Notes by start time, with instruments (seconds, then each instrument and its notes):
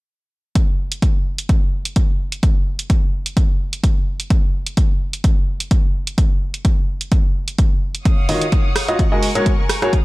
0.55 kick, closed hi-hat
0.92 closed hi-hat
1.02 kick, closed hi-hat
1.38 closed hi-hat
1.49 kick, closed hi-hat
1.85 closed hi-hat
1.96 kick, closed hi-hat
2.32 closed hi-hat
2.43 kick, closed hi-hat
2.79 closed hi-hat
2.90 kick, closed hi-hat
3.26 closed hi-hat
3.37 kick, closed hi-hat
3.73 closed hi-hat
3.84 kick, closed hi-hat
4.20 closed hi-hat
4.30 kick, closed hi-hat
4.67 closed hi-hat
4.77 kick, closed hi-hat
5.13 closed hi-hat
5.24 kick, closed hi-hat
5.60 closed hi-hat
5.71 kick, closed hi-hat
6.07 closed hi-hat
6.18 kick, closed hi-hat
6.54 closed hi-hat
6.65 kick, closed hi-hat
7.01 closed hi-hat
7.12 kick, closed hi-hat
7.48 closed hi-hat
7.58 kick, closed hi-hat
7.95 closed hi-hat
8.05 violin section C#5 F5 F#5 D#6, kick, closed hi-hat
8.29 upright piano D#3 F4 F#4 C#5 D#5, open hi-hat
8.41 closed hi-hat
8.52 kick, closed hi-hat
8.76 cross-stick, open hi-hat
8.88 upright piano F4 F#4 C#5 D#5, closed hi-hat
8.99 violin section A#4 G#5 C#6, kick, closed hi-hat
9.12 upright piano G#3 F#4 G#4 A#4 D#5
9.23 open hi-hat
9.35 upright piano G#3 F#4 G#4 A#4 C#5, closed hi-hat
9.46 kick, closed hi-hat
9.69 cross-stick, open hi-hat
9.82 upright piano F#4 G#4 A#4 C#5, cross-stick, closed hi-hat
9.93 violin section G#4 F5 D#6, kick, closed hi-hat